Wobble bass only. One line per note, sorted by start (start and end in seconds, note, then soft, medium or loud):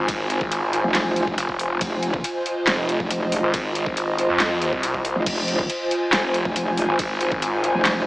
0.84 1.26 F1 loud
1.27 1.36 F1 loud
1.81 2.23 F1 loud
3.00 3.41 F1 loud
5.16 5.25 F1 loud
5.26 5.68 F1 loud
6.45 6.87 F1 loud
7.75 8.07 F1 loud